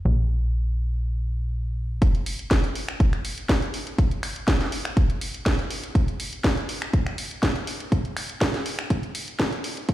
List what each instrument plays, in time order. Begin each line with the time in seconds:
0.05 analog synth bass A#1
2.02 kick, closed hi-hat
2.15 closed hi-hat
2.26 open hi-hat
2.39 closed hi-hat
2.51 kick, snare, closed hi-hat
2.64 closed hi-hat
2.76 open hi-hat
2.89 finger snap, closed hi-hat
3.00 kick, closed hi-hat
3.13 finger snap, closed hi-hat
3.25 open hi-hat
3.38 closed hi-hat
3.49 kick, snare, closed hi-hat
3.62 closed hi-hat
3.74 open hi-hat
3.87 closed hi-hat
3.98 kick, closed hi-hat
4.11 closed hi-hat
4.23 finger snap, open hi-hat
4.36 closed hi-hat
4.48 kick, snare, closed hi-hat
4.61 snare, closed hi-hat
4.72 open hi-hat
4.85 finger snap, closed hi-hat
4.97 kick, closed hi-hat
5.10 closed hi-hat
5.21 open hi-hat
5.34 closed hi-hat
5.46 kick, snare, closed hi-hat
5.59 closed hi-hat
5.71 open hi-hat
5.84 closed hi-hat
5.95 kick, closed hi-hat
6.08 closed hi-hat
6.20 open hi-hat
6.33 closed hi-hat
6.44 kick, snare, closed hi-hat
6.57 closed hi-hat
6.69 open hi-hat
6.82 finger snap, closed hi-hat
6.93 kick, closed hi-hat
7.07 finger snap, closed hi-hat
7.18 open hi-hat
7.31 closed hi-hat
7.43 kick, snare, closed hi-hat
7.56 closed hi-hat
7.67 open hi-hat
7.80 closed hi-hat
7.92 kick, closed hi-hat
8.05 closed hi-hat
8.17 finger snap, open hi-hat
8.30 closed hi-hat
8.41 kick, snare, closed hi-hat
8.54 snare, closed hi-hat
8.66 open hi-hat
8.79 finger snap, closed hi-hat
8.90 kick, closed hi-hat
9.03 closed hi-hat
9.15 open hi-hat
9.28 closed hi-hat
9.39 kick, snare, closed hi-hat
9.52 closed hi-hat
9.64 open hi-hat
9.77 closed hi-hat
9.89 kick, closed hi-hat